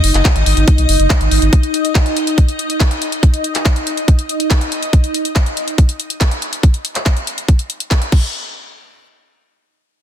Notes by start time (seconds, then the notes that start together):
Already playing: D#4 D#5
0.04 F#1, open hi-hat
0.14 F#1, clap, closed hi-hat
0.25 kick, clap, closed hi-hat
0.36 G#1, closed hi-hat
0.46 G#1, open hi-hat
0.57 G#1, closed hi-hat
0.68 kick, closed hi-hat
0.78 B1, closed hi-hat
0.89 F#1, open hi-hat
1.00 F#1, closed hi-hat
1.10 kick, clap, closed hi-hat
1.21 G#1, closed hi-hat
1.31 G#1, open hi-hat
1.42 G#1, closed hi-hat
1.53 kick, closed hi-hat
1.63 closed hi-hat
1.74 closed hi-hat
1.85 closed hi-hat
1.95 kick, clap, closed hi-hat
2.06 closed hi-hat
2.17 closed hi-hat
2.27 closed hi-hat
2.38 kick, closed hi-hat
2.48 closed hi-hat
2.59 closed hi-hat
2.70 closed hi-hat
2.80 kick, clap, closed hi-hat
2.91 closed hi-hat
3.02 closed hi-hat
3.12 closed hi-hat
3.23 kick, closed hi-hat
3.34 closed hi-hat
3.44 closed hi-hat
3.55 clap, closed hi-hat
3.65 kick, clap, closed hi-hat
3.76 closed hi-hat
3.87 closed hi-hat
3.97 closed hi-hat
4.08 kick, closed hi-hat
4.19 closed hi-hat
4.29 closed hi-hat
4.40 closed hi-hat
4.51 kick, clap, closed hi-hat
4.61 closed hi-hat
4.72 closed hi-hat
4.83 closed hi-hat
4.93 kick, closed hi-hat
5.04 closed hi-hat
5.14 closed hi-hat
5.25 closed hi-hat
5.36 kick, clap, closed hi-hat
5.46 closed hi-hat
5.57 closed hi-hat
5.68 closed hi-hat
5.78 kick, closed hi-hat
5.89 closed hi-hat
6.00 closed hi-hat
6.10 closed hi-hat
6.21 kick, clap, closed hi-hat
6.31 closed hi-hat
6.42 closed hi-hat
6.53 closed hi-hat
6.63 kick, closed hi-hat
6.74 closed hi-hat
6.85 closed hi-hat
6.95 clap, closed hi-hat
7.06 kick, clap, closed hi-hat
7.17 closed hi-hat
7.27 closed hi-hat
7.38 closed hi-hat
7.48 kick, closed hi-hat
7.59 closed hi-hat
7.70 closed hi-hat
7.80 closed hi-hat
7.91 kick, clap, closed hi-hat
8.02 closed hi-hat
8.12 kick, crash